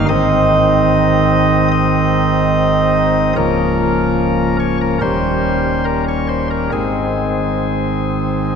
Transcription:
0.09 3.34 G#1 medium
0.09 3.34 G#2 medium
0.09 3.34 D#3 medium
0.09 3.34 C4 medium
0.09 3.34 D#4 medium
0.09 1.68 D#5 loud
1.71 3.33 D#5 loud
3.36 4.98 C#1 medium
3.36 4.98 C#2 medium
3.36 4.98 F3 medium
3.36 4.98 A#3 medium
3.36 4.98 C#4 medium
3.36 4.57 A#4 loud
4.60 4.78 C#5 loud
4.81 4.99 A#4 medium
5.01 6.69 D#1 medium
5.01 6.70 D#2 medium
5.01 6.69 G3 medium
5.01 6.69 A#3 medium
5.01 6.69 C#4 medium
5.01 5.84 C5 loud
5.85 6.04 A#4 medium
6.08 6.27 C#5 medium
6.29 6.48 C5 medium
6.50 6.70 A#4 medium
6.72 8.55 G#1 medium
6.72 8.55 G#2 medium
6.72 8.55 D#3 soft
6.72 8.55 G#3 medium
6.72 8.55 C4 medium
6.72 8.55 G#4 medium

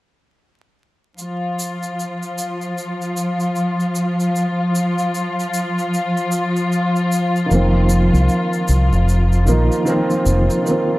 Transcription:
1.18 10.99 F3 medium
1.18 10.99 F4 medium
1.18 shaker soft
1.59 shaker medium
1.83 shaker soft
2.00 shaker soft
2.23 shaker soft
2.38 shaker medium
2.61 shaker soft
2.78 shaker soft
3.01 shaker soft
3.17 shaker medium
3.40 shaker soft
3.56 shaker soft
3.80 shaker soft
3.95 shaker medium
4.20 shaker soft
4.36 shaker soft
4.75 shaker medium
4.98 shaker soft
5.15 shaker soft
5.40 shaker soft
5.54 shaker medium
5.79 shaker soft
5.94 shaker soft
6.17 shaker soft
6.32 shaker medium
6.56 shaker soft
6.72 shaker soft
6.96 shaker soft
7.12 shaker medium
7.36 shaker soft
7.46 9.42 D#3 medium
7.46 9.43 F3 medium
7.51 8.09 F1 medium
7.51 9.44 A#3 medium
7.51 9.46 C4 medium
7.51 shaker soft
7.89 shaker medium
8.13 8.27 C2 medium
8.13 shaker soft
8.29 shaker soft
8.53 shaker soft
8.68 8.90 C2 medium
8.68 shaker medium
8.92 9.45 F1 medium
8.92 shaker soft
9.09 shaker soft
9.33 shaker soft
9.45 9.68 A#1 medium
9.45 9.82 D#3 medium
9.45 9.83 F3 medium
9.45 9.84 A#3 medium
9.45 shaker medium
9.50 9.84 D#4 medium
9.72 shaker soft
9.85 10.61 D#3 medium
9.85 10.62 F3 medium
9.85 10.63 A#3 medium
9.85 shaker soft
9.89 10.63 C4 loud
10.10 shaker soft
10.26 10.47 F1 medium
10.26 shaker medium
10.50 shaker soft
10.62 10.99 D#3 medium
10.62 10.99 F3 medium
10.66 10.99 A#3 medium
10.66 10.99 C4 medium
10.66 shaker medium

